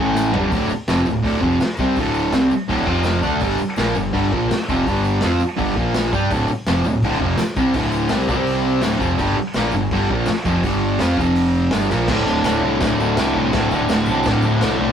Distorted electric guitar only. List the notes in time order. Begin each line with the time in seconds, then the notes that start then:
0.00 A2 E3 A3
0.32 G2 D3 G3
0.52 D2 A2 D3
0.70 muted distorted electric guitar stroke
0.88 F2 C3 F3
1.07 D2 A2
1.22 D2 A2 D3
1.40 F2 C3 F3
1.61 muted distorted electric guitar stroke
1.79 C3 G3 C4
1.98 D2 A2 D3
2.33 C3 G3 C4
2.51 muted distorted electric guitar stroke
2.68 D2 A2 D3
2.86 F2 C3 F3
3.22 D3 A3 D4
3.41 G2 D3 G3
3.59 muted distorted electric guitar stroke
3.77 A#2 F3 A#3
3.96 G2 D3
4.13 G2 D3 G3
4.32 A#2 F3 A#3
4.49 muted distorted electric guitar stroke
4.69 F2 C3 F3
4.86 G2 D3 G3
5.23 F3 C4 F4
5.41 muted distorted electric guitar stroke
5.57 G2 D3 G3
5.76 A#2 F3 A#3
6.13 G3 D4 G4
6.31 D2 A2 D3
6.50 muted distorted electric guitar stroke
6.67 F2 C3 F3
6.86 D2 A2
7.04 D2 A2 D3
7.20 F2 C3 F3
7.37 muted distorted electric guitar stroke
7.57 C3 G3 C4
7.75 D2 A2 D3
8.10 C3 G3 C4
8.29 C3 G3 C4
8.83 D2 A2 D3
9.00 F2 C3 F3
9.19 G2 D3 G3
9.37 muted distorted electric guitar stroke
9.56 A#2 F3 A#3
9.75 G2 D3
9.92 G2 D3 G3
10.11 A#2 F3 A#3
10.28 muted distorted electric guitar stroke
10.45 F2 C3 F3
10.65 G2 D3 G3
11.00 F3 C4 F4
11.18 F2 C3 F3
11.72 G2 D3 G3
11.90 A#2 F3 A#3
12.10 D2 A2 D3
12.27 D2 A2 D3
12.44 D2 A2 D3
12.62 D2 A2 D3
12.81 D2 A2 D3
12.99 D2 A2 D3
13.18 D2 A2 D3
13.34 D2 A2 D3
13.53 D2 A2 D3
13.72 D2 A2 D3
13.92 D2 A2 D3
14.09 D2 A2 D3
14.28 D2 A2 D3
14.45 D2 A2 D3
14.61 D2 A2 D3
14.78 D2 A2 D3